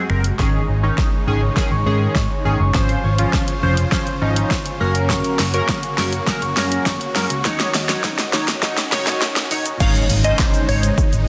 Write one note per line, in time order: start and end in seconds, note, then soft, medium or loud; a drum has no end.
0.00 0.37 C3 medium
0.00 0.37 G#3 medium
0.00 0.37 F#4 medium
0.10 0.30 F#1 medium
0.10 0.24 F#3 medium
0.10 0.24 C4 medium
0.10 0.24 A#4 loud
0.10 finger snap medium
0.24 closed hi-hat medium
0.39 0.59 G#1 loud
0.39 2.72 C#3 medium
0.39 0.63 D#3 medium
0.39 2.72 G#3 medium
0.39 0.63 C#4 medium
0.39 2.72 D#4 medium
0.39 0.63 G#4 loud
0.39 0.83 C#6 loud
0.39 kick loud
0.39 snare medium
0.54 1.42 C#5 medium
0.68 0.88 G#1 loud
0.68 1.12 C#4 medium
0.83 1.07 D#3 medium
0.83 1.07 C#4 medium
0.83 1.07 D#4 loud
0.83 1.71 C#6 medium
0.98 kick loud
0.98 snare medium
1.13 1.56 C#4 medium
1.27 1.47 G#1 medium
1.27 1.41 D#3 medium
1.27 1.41 C#4 medium
1.27 1.42 G#4 medium
1.42 1.86 C#5 medium
1.56 1.71 D#3 medium
1.56 2.00 C#4 medium
1.56 1.71 C#4 medium
1.56 1.71 G#4 loud
1.56 kick loud
1.56 snare medium
1.71 1.81 G#1 medium
1.71 2.15 C#6 medium
1.86 2.06 G#2 loud
1.86 2.18 D#3 medium
1.86 2.18 C#4 medium
1.86 2.18 G#4 loud
1.86 2.30 C#5 medium
2.01 2.45 C#4 medium
2.15 2.25 G#2 loud
2.15 2.59 C#6 medium
2.15 kick loud
2.15 snare medium
2.30 2.80 C#5 medium
2.45 2.55 G#1 medium
2.45 2.59 D#3 medium
2.45 2.59 C#4 medium
2.45 2.80 C#4 medium
2.45 2.59 G#4 loud
2.60 2.70 F#1 medium
2.60 2.80 C#6 medium
2.74 2.94 G#1 loud
2.74 4.78 C#3 medium
2.74 2.98 F3 medium
2.74 2.98 C#4 medium
2.74 4.78 F4 medium
2.74 3.10 C5 medium
2.74 4.78 C5 medium
2.74 2.99 C5 medium
2.74 kick loud
2.74 snare medium
2.89 closed hi-hat soft
3.04 3.24 G#1 loud
3.04 3.47 C#5 loud
3.18 3.42 F3 medium
3.18 3.43 C#4 medium
3.18 3.43 F4 loud
3.18 closed hi-hat medium
3.33 3.69 C#4 medium
3.33 kick loud
3.33 snare medium
3.48 3.69 C#5 medium
3.48 closed hi-hat medium
3.62 3.83 F1 loud
3.62 3.76 F3 medium
3.62 3.77 C#4 medium
3.62 3.83 C5 medium
3.62 3.77 C5 loud
3.77 4.13 C#4 medium
3.77 closed hi-hat medium
3.92 4.06 F3 medium
3.92 4.06 C#4 medium
3.92 4.06 C5 loud
3.92 4.13 C#5 loud
3.92 kick loud
3.92 snare medium
4.07 4.28 C5 medium
4.07 closed hi-hat medium
4.21 4.41 G#1 medium
4.21 4.53 F3 medium
4.21 4.54 C#4 medium
4.21 4.57 C#4 medium
4.21 4.54 D#4 loud
4.36 4.57 C#5 loud
4.36 closed hi-hat medium
4.51 4.72 C5 medium
4.51 kick loud
4.51 snare medium
4.66 5.39 C#4 medium
4.66 closed hi-hat medium
4.80 5.20 F#1 medium
4.80 7.42 C#3 medium
4.80 5.39 F#3 medium
4.80 7.42 A#3 medium
4.80 5.39 C#4 medium
4.80 9.76 F#4 medium
4.80 5.39 A#4 loud
4.80 5.09 C#6 loud
4.95 5.24 C#5 medium
4.95 closed hi-hat medium
5.10 5.53 C#6 loud
5.10 kick loud
5.10 snare medium
5.10 shaker medium
5.24 6.12 C#5 medium
5.24 closed hi-hat medium
5.24 shaker medium
5.39 5.59 F#1 loud
5.39 5.83 C#4 medium
5.39 snare medium
5.39 open hi-hat medium
5.54 5.78 F#3 medium
5.54 5.78 C#4 medium
5.54 5.78 A#4 loud
5.54 6.42 C#6 medium
5.54 closed hi-hat medium
5.54 shaker medium
5.69 kick loud
5.69 snare medium
5.69 shaker medium
5.83 6.27 C#4 medium
5.83 closed hi-hat medium
5.83 shaker medium
5.98 6.18 F#1 medium
5.98 6.12 F#3 medium
5.98 6.12 C#4 medium
5.98 6.12 A#4 loud
5.98 snare medium
5.98 open hi-hat medium
5.98 shaker soft
6.13 6.56 C#5 medium
6.13 closed hi-hat medium
6.13 shaker soft
6.27 6.41 F#3 medium
6.27 6.71 C#4 medium
6.27 6.41 C#4 medium
6.27 6.42 A#4 loud
6.27 kick loud
6.27 snare medium
6.27 shaker medium
6.42 6.52 F#1 loud
6.42 6.86 C#6 medium
6.42 closed hi-hat medium
6.42 shaker medium
6.56 6.77 F#2 loud
6.56 6.89 F#3 medium
6.56 6.89 C#4 medium
6.56 6.89 A#4 loud
6.56 7.00 C#5 medium
6.56 snare loud
6.56 open hi-hat medium
6.71 7.15 C#4 medium
6.71 closed hi-hat medium
6.71 shaker soft
6.86 6.96 F#2 loud
6.86 7.30 C#6 loud
6.86 kick loud
6.86 snare loud
6.86 shaker medium
7.01 7.45 C#5 medium
7.01 closed hi-hat medium
7.01 shaker soft
7.15 7.26 F#2 medium
7.15 7.29 F#3 medium
7.15 7.30 C#4 medium
7.15 10.05 C#4 medium
7.15 7.30 A#4 loud
7.15 snare loud
7.15 open hi-hat medium
7.15 shaker soft
7.30 7.40 C#2 medium
7.30 8.56 C#6 loud
7.30 closed hi-hat medium
7.30 shaker medium
7.45 7.65 D#2 loud
7.45 9.78 D#3 medium
7.45 7.69 F#3 medium
7.45 9.78 C#4 medium
7.45 7.69 D#4 medium
7.45 7.69 C#5 loud
7.45 kick loud
7.45 snare loud
7.45 shaker medium
7.60 snare loud
7.60 closed hi-hat medium
7.60 shaker medium
7.74 7.94 D#2 loud
7.74 8.18 D#5 medium
7.74 snare loud
7.74 open hi-hat medium
7.74 shaker medium
7.89 8.13 F#3 medium
7.89 8.13 D#4 medium
7.89 8.13 C#5 loud
7.89 snare loud
7.89 closed hi-hat medium
7.89 shaker medium
8.04 8.48 D#4 medium
8.04 kick loud
8.04 snare loud
8.04 shaker medium
8.18 8.62 D#5 medium
8.18 snare loud
8.18 closed hi-hat medium
8.18 shaker medium
8.33 8.53 D#2 medium
8.33 8.47 F#3 medium
8.33 8.47 D#4 medium
8.33 8.77 C#5 medium
8.33 8.48 C#5 medium
8.33 snare loud
8.33 open hi-hat medium
8.33 shaker soft
8.48 8.92 D#4 medium
8.48 snare loud
8.48 closed hi-hat medium
8.48 shaker medium
8.48 shaker soft
8.62 8.77 F#3 medium
8.62 8.77 D#4 medium
8.62 8.77 C#5 loud
8.62 9.06 D#5 loud
8.62 kick loud
8.62 snare loud
8.62 shaker medium
8.77 9.21 C#5 medium
8.77 snare loud
8.77 closed hi-hat soft
8.77 shaker medium
8.92 9.12 C#2 loud
8.92 9.24 F#3 medium
8.92 9.36 D#4 medium
8.92 9.24 D#4 medium
8.92 9.24 C#5 loud
8.92 snare loud
8.92 open hi-hat medium
8.92 shaker medium
9.07 9.50 D#5 loud
9.07 snare loud
9.07 closed hi-hat medium
9.07 shaker medium
9.21 9.65 C#5 medium
9.21 snare loud
9.21 shaker medium
9.36 11.28 D#4 medium
9.36 snare loud
9.36 closed hi-hat medium
9.36 shaker soft
9.36 shaker medium
9.51 9.71 F#1 medium
9.51 9.65 F#3 medium
9.51 9.65 D#4 medium
9.51 9.65 C#5 loud
9.51 11.28 D#5 loud
9.51 open hi-hat medium
9.51 shaker soft
9.51 shaker medium
9.66 11.28 C#5 medium
9.66 closed hi-hat medium
9.66 shaker medium
9.80 10.00 G#1 loud
9.80 11.28 C#3 medium
9.80 10.04 G#3 medium
9.80 11.28 G#3 medium
9.80 10.04 C#4 medium
9.80 11.28 D#4 medium
9.80 10.04 D#4 medium
9.80 10.05 C#5 medium
9.80 9.93 F5 medium
9.80 kick loud
9.80 crash loud
9.80 impact medium
9.80 shaker medium
9.95 closed hi-hat medium
9.95 shaker medium
10.10 10.30 G#1 loud
10.10 open hi-hat medium
10.10 shaker medium
10.24 10.88 G#3 medium
10.24 10.89 C#4 medium
10.24 10.89 D#4 medium
10.24 10.89 C5 medium
10.24 10.37 D#5 medium
10.24 closed hi-hat medium
10.24 shaker medium
10.39 kick loud
10.39 snare medium
10.39 clap loud
10.39 shaker medium
10.54 closed hi-hat medium
10.54 shaker medium
10.69 10.89 G#1 medium
10.69 11.24 C#5 medium
10.69 open hi-hat medium
10.69 shaker soft
10.83 closed hi-hat medium
10.83 shaker medium
10.83 shaker soft
10.98 kick loud
10.98 shaker medium
11.13 11.23 G#1 loud
11.13 closed hi-hat medium
11.13 shaker medium